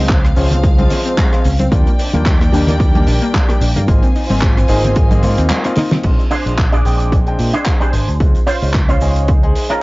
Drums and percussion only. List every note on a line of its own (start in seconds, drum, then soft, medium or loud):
0.09 kick loud
0.09 clap loud
0.09 closed hi-hat medium
0.09 shaker medium
0.25 cross-stick medium
0.25 closed hi-hat soft
0.25 shaker soft
0.36 open hi-hat loud
0.36 shaker medium
0.51 closed hi-hat medium
0.51 low conga medium
0.51 shaker medium
0.64 kick loud
0.64 closed hi-hat medium
0.64 shaker medium
0.79 closed hi-hat medium
0.79 high conga medium
0.90 open hi-hat loud
0.90 low conga medium
0.90 shaker medium
1.05 closed hi-hat medium
1.05 shaker soft
1.18 kick loud
1.18 clap loud
1.18 closed hi-hat medium
1.18 high conga medium
1.18 shaker medium
1.32 cross-stick medium
1.32 closed hi-hat soft
1.32 shaker soft
1.44 open hi-hat medium
1.44 shaker medium
1.59 closed hi-hat medium
1.59 high conga loud
1.59 shaker medium
1.72 kick loud
1.72 closed hi-hat medium
1.72 shaker medium
1.86 closed hi-hat medium
1.86 shaker soft
1.99 open hi-hat loud
1.99 shaker medium
2.13 closed hi-hat medium
2.13 high conga medium
2.13 shaker medium
2.26 kick loud
2.26 clap loud
2.26 closed hi-hat medium
2.26 shaker medium
2.41 cross-stick medium
2.41 closed hi-hat medium
2.41 shaker soft
2.53 open hi-hat loud
2.53 high conga medium
2.53 shaker medium
2.67 closed hi-hat medium
2.67 low conga medium
2.67 shaker medium
2.80 kick loud
2.80 closed hi-hat medium
2.80 shaker medium
2.95 closed hi-hat medium
2.95 high conga medium
3.07 open hi-hat loud
3.07 shaker medium
3.22 closed hi-hat medium
3.22 shaker soft
3.34 kick loud
3.34 clap loud
3.34 closed hi-hat medium
3.34 high conga medium
3.34 shaker medium
3.49 cross-stick medium
3.49 closed hi-hat soft
3.49 shaker medium
3.61 open hi-hat loud
3.61 shaker medium
3.76 closed hi-hat medium
3.76 high conga medium
3.76 low conga medium
3.76 shaker soft
3.88 kick loud
3.88 closed hi-hat medium
3.88 shaker medium
4.03 closed hi-hat medium
4.03 shaker soft
4.16 open hi-hat loud
4.16 shaker loud
4.29 open hi-hat medium
4.29 high conga medium
4.29 shaker medium
4.41 kick loud
4.41 clap loud
4.41 closed hi-hat loud
4.41 shaker medium
4.57 cross-stick medium
4.57 closed hi-hat soft
4.57 shaker medium
4.68 open hi-hat loud
4.68 shaker medium
4.84 closed hi-hat medium
4.84 low conga medium
4.84 shaker soft
4.95 kick loud
4.95 closed hi-hat loud
4.95 shaker medium
5.11 closed hi-hat medium
5.11 high conga medium
5.11 shaker soft
5.23 open hi-hat loud
5.23 low conga medium
5.23 shaker medium
5.38 closed hi-hat medium
5.38 shaker medium
5.50 clap loud
5.50 closed hi-hat medium
5.50 high conga medium
5.50 shaker medium
5.64 cross-stick medium
5.64 closed hi-hat medium
5.64 shaker soft
5.76 snare medium
5.76 open hi-hat loud
5.76 shaker loud
5.91 snare loud
5.91 closed hi-hat medium
5.91 high conga medium
5.91 shaker soft
6.03 kick loud
6.03 closed hi-hat medium
6.03 crash medium
6.03 shaker medium
6.19 closed hi-hat soft
6.19 shaker soft
6.31 open hi-hat loud
6.31 shaker medium
6.46 closed hi-hat medium
6.46 shaker soft
6.58 kick loud
6.58 clap loud
6.58 closed hi-hat medium
6.58 shaker medium
6.72 closed hi-hat soft
6.72 shaker soft
6.85 open hi-hat medium
6.85 shaker medium
7.00 closed hi-hat medium
7.00 shaker soft
7.12 kick loud
7.12 closed hi-hat medium
7.12 shaker medium
7.27 closed hi-hat medium
7.39 open hi-hat loud
7.39 shaker medium
7.54 closed hi-hat medium
7.54 shaker soft
7.66 kick loud
7.66 clap loud
7.66 closed hi-hat medium
7.66 shaker medium
7.81 closed hi-hat soft
7.81 shaker soft
7.93 open hi-hat loud
7.93 shaker medium
8.08 closed hi-hat medium
8.08 shaker soft
8.20 kick loud
8.20 closed hi-hat medium
8.20 shaker medium
8.35 closed hi-hat soft
8.35 shaker soft
8.47 open hi-hat loud
8.47 shaker medium
8.62 open hi-hat medium
8.62 shaker soft
8.74 kick loud
8.74 clap loud
8.74 closed hi-hat medium
8.74 shaker medium
8.89 closed hi-hat medium
8.89 shaker soft
9.01 open hi-hat loud
9.01 shaker medium
9.16 closed hi-hat medium
9.16 shaker soft
9.28 kick loud
9.28 closed hi-hat medium
9.28 shaker medium
9.43 closed hi-hat soft
9.55 open hi-hat loud
9.55 shaker medium
9.71 closed hi-hat medium
9.71 shaker soft